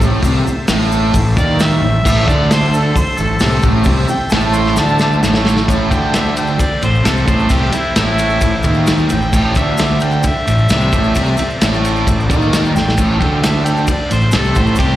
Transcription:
Already playing: A4 C5 E5
0.00 A1 A2, kick, shaker
0.22 C2 C3, kick, open hi-hat, shaker
0.46 muted fingered electric bass stroke, muted distorted electric guitar stroke, shaker
0.68 A1 A2, snare, open hi-hat, shaker
0.92 shaker
1.14 A1 A2, kick, open hi-hat, shaker
1.37 D#2 D#3 D5, kick, shaker
1.59 E5, snare, open hi-hat, shaker
1.82 A1 A2
2.04 A1 A2 A4 C5, kick, crash, shaker
2.09 E5
2.27 D2 D3 D5, kick, shaker
2.51 C5, snare, open hi-hat, shaker
2.74 A4, shaker
2.95 C5, muted distorted electric guitar stroke, muted fingered electric bass stroke, kick, open hi-hat, shaker
3.18 A1 A2 A4, shaker
3.39 C2 C3, snare, open hi-hat, shaker
3.62 A1 A2, kick, shaker
3.84 C2 C3, kick, open hi-hat, shaker
4.08 G5, muted distorted electric guitar stroke, muted fingered electric bass stroke, shaker
4.30 A1 A2 A5, snare, open hi-hat, shaker
4.41 shaker
4.53 C6, shaker
4.66 snare
4.76 D2 D3 A5, snare, shaker
4.88 shaker
4.99 snare, shaker
5.13 shaker
5.22 A1 A2, snare, shaker
5.34 snare, shaker
5.45 snare, shaker
5.57 snare
5.65 A1 A2 A4 C5, kick, ride
5.70 E5, shaker
5.91 D2 D3 G5, kick, ride, shaker
6.14 E5, snare, ride, shaker
6.37 G5, ride, shaker
6.47 shaker
6.59 D5, muted distorted electric guitar stroke, muted fingered electric bass stroke, kick, ride, shaker
6.82 A1 A2 C5, ride, shaker
6.95 shaker
7.04 C2 C3 A4, snare, ride, shaker
7.17 shaker
7.26 A1 A2 C5, kick, ride, shaker
7.39 shaker
7.49 C2 C3 G4, kick, ride, shaker
7.72 E4, muted distorted electric guitar stroke, muted fingered electric bass stroke, ride, shaker
7.96 A1 A2 E4, snare, ride, shaker
8.18 ride, shaker
8.29 shaker
8.41 A1 A2, kick, ride, shaker
8.63 D#2 D#3, kick, ride, shaker
8.74 shaker
8.87 snare, ride, shaker
8.98 shaker
9.09 A1 A2 G5, ride, shaker
9.22 shaker
9.29 A1 A2 A4 C5 D5, kick, crash, shaker
9.55 D2 D3 E5, kick, ride, shaker
9.78 snare, ride, shaker
10.00 ride, shaker
10.04 G5
10.11 shaker
10.23 muted fingered electric bass stroke, muted distorted electric guitar stroke, kick, ride, shaker
10.27 E5
10.47 A1 A2, ride, shaker
10.58 shaker
10.69 C2 C3, snare, ride, shaker
10.81 shaker
10.92 A1 A2, kick, ride, shaker
11.04 shaker
11.15 C2 C3, kick, ride, shaker
11.26 shaker
11.37 muted distorted electric guitar stroke, muted fingered electric bass stroke, ride, shaker
11.50 shaker
11.61 A1 A2, snare, ride, shaker
11.74 shaker
11.85 ride, shaker
11.96 shaker
12.07 A1 A2, kick, ride, shaker
12.20 shaker
12.29 D#2 D#3, kick, ride, shaker
12.41 shaker
12.53 snare, ride, shaker
12.65 shaker
12.75 A1 A2 G5, snare, shaker
12.88 snare
12.96 A1 A2 A4 C5 E5, kick, crash, shaker
13.20 D2 D3 G5, kick, ride
13.43 E5, snare, ride, shaker
13.64 G5, ride, shaker
13.77 shaker
13.87 D5, muted distorted electric guitar stroke, muted fingered electric bass stroke, kick, ride, shaker
14.10 A1 A2 C5, ride, shaker
14.21 shaker
14.31 C2 C3 A4, snare, ride, shaker
14.45 shaker
14.55 A1 A2 C5, kick, ride, shaker
14.67 shaker
14.75 C2 C3 G4, kick, shaker
14.80 ride

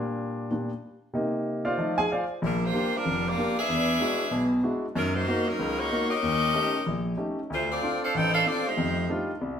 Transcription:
Already playing: A#2 G3 D4
0.51 A#2 G3 D4
1.13 C3 A#3 D#4
1.65 F4 C5 D5 F5
1.78 F3 A3 D#4
1.98 G#4 G#5
2.12 F4 C5 D5 F5
2.42 A#1 G3 D4 F4 A#4
2.65 A#3 F4 G4 C5
2.74 A#3 D4 G4
2.96 G3 D4 F4 A#4
3.06 F1
3.28 A#3 F4 G4 D5
3.37 A#3 D4 G4
3.59 D4 G#4 B4 E5
3.69 E2
4.00 G#3 D4 E4 F#4
4.31 B1 B2
4.63 G#3 D4 E4 F#4
4.96 F#2 F#3 C#4 D#4 A#4
5.14 A#3 D#4 F#4 C5
5.28 A#3 D#4 F#4
5.48 F#3 C#4 D#4 A#4
5.59 C#2
5.78 A#3 D#4 F#4 C#5
5.91 A#3 D#4 F#4
6.10 C#4 G4 A#4 D#5
6.23 D#2
6.54 A3 C#4 D#4 G4
6.86 A#1
7.17 A3 C#4 D#4 G4
7.50 D2 A3 D4 F4 C5
7.72 C4 F4 A4 D5
7.83 C4 D4 F4
8.04 D4 A4 C5 F5
8.15 A1 D#4 A4 C5 G5
8.34 D4 A4 C5 F5
8.46 C4 D4 F4 A4 D5
8.67 A3 D#4 G4 C5
8.77 F2
9.10 G3 A3 D4 D#4 F4
9.41 C2

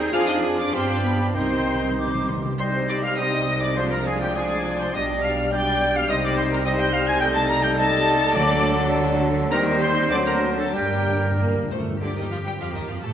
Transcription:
Already playing: D#2 G3 D#4 G#4 C5 G5
0.00 C4 D#4
0.13 F2 F3 D4 F4 G#4 D5 F5 G#5 F6
0.26 D4 D#4 F4 D#5 D#6
0.43 F4 G#4
0.57 D4 F4 D5 D6
0.72 G2 F3 B3 C4 D4 F4 G4 C5 D5 G5 C6
0.88 D4 G4
1.02 B3 F4 B4 B5
1.20 D4 G4
1.34 C2 C3 D#3 G3 C4 D#4 C5 G5 C6
1.43 C3
1.51 C3 C4 G4
1.59 C3
1.67 C3 G3 D#4
1.75 C3
1.83 C3 C4 G4
1.91 C3
1.98 C3 G3 D#4 D6
2.07 C3
2.14 C3 C4 G4
2.23 C3
2.28 C3 G3 D#4 C6
2.37 C3
2.44 C3 C4 G4
2.58 C2 C3 G3 C4 D#4 G4 C5 D#5 C6
2.87 D5 D6
3.03 F5 F6
3.17 G3 D#4 C5 D#5 D#6
3.61 D5 D6
3.76 F3 G#3 D4 F4 C5 D5 C6
3.90 A#4 A#5
4.06 G#4 G#5
4.20 G4 G5
4.35 F3 D4 G#4 D5 G#5
4.79 C5 C6
4.93 B1 B2 G3 D4 G4 D5 D#5 D#6
5.24 F5 F6
5.52 G3 D4 D5 G5 G6
5.95 F5 F6
6.09 C2 C3 G3 C4 D#4 C5 D#5 D#6
6.23 D5 D6
6.37 C5 C6
6.52 A#4 A#5
6.65 G3 D#4 C5 D#5 D#6
6.79 G5 G6
6.93 F5 F6
7.07 G#5 G#6
7.20 G3 A3 D#4 A4 D#5 G5 G6
7.35 A5 A6
7.48 A#5 A#6
7.62 G5 G6
7.77 G3 D#5 A5 A6
8.35 D2 D3 F#3 D4 D5 D6
9.50 D#2 D#3 G3 C4 D#4 G4 A#4 C5 D#5 A#5
9.80 C5 C6
10.10 D2 D3 F#3 A3 D4 F#4 C5 D5 D6
10.26 A#4 A#5
10.58 A4 A5
10.73 G1 G2 G3 A#3 G4 A#4 G5
10.82 G2
10.90 G2
10.98 G2
11.06 G2
11.14 G2
11.23 G2
11.31 G2
11.38 G2 A#3
11.47 G2
11.55 G2
11.63 G2
11.70 G2 A3 C5
11.80 G2
11.88 G2
12.01 D2 D3 D4 G4 D5
12.15 D#2 D#3 D#4 D#5
12.30 F2 F3 F4 F5
12.45 G2 G3 G4 G5
12.60 F2 F3 F4 F5
12.75 D#2 D#3 D#4 D#5
12.88 F2 F3 F4 F5
13.03 A2 A3 A4 A5

